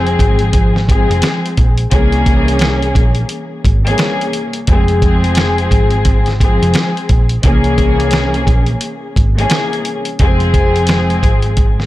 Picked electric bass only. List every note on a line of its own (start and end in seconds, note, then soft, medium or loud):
0.00 0.16 F1 loud
0.19 1.06 G#1 medium
1.10 1.21 F1 loud
1.58 1.85 A#1 medium
1.92 2.92 C2 loud
2.95 3.23 A#1 medium
3.65 3.92 G#1 medium
4.68 5.68 F1 loud
5.71 6.58 G#1 medium
6.62 6.72 F1 loud
7.10 7.37 A#1 medium
7.44 8.43 C2 loud
8.47 8.75 A#1 medium
9.17 9.44 G#1 medium
10.20 11.19 F1 loud
11.23 11.86 G#1 medium